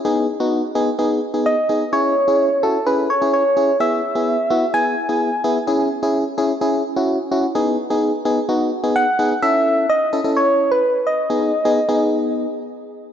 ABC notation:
X:1
M:4/4
L:1/16
Q:1/4=128
K:C#m
V:1 name="Soft synth lead"
z12 d4 | c6 A2 B2 c2 c4 | e8 g6 z2 | z16 |
z12 f4 | e4 d4 c3 B3 d2- | d8- d2 z6 |]
V:2 name="FM electric piano"
[B,DG]2 z [B,DF]2 z [B,DG] z [B,DG]2 z [B,DG]2 z [B,DG] z | [CEG]2 z [CEG]2 z [CEF] z [CEG]2 z [CEG]2 z [CEG] z | [B,EG]2 z [B,EG]2 z [B,EF] z [B,EG]2 z [B,EG]2 z [B,EG] z | [CEG]2 z [CEG]2 z [CEG] z [CEG]2 z [CEF]2 z [CEF] z |
[B,DG]2 z [B,DG]2 z [B,DG] z [B,DF]2 z [B,DG]2 z [B,DG] z | [CEA]4 z2 [CEA] [CEA]4- [CEA] z4 | [B,DG]2 z [B,DG] z [B,DG]4- [B,DG] z6 |]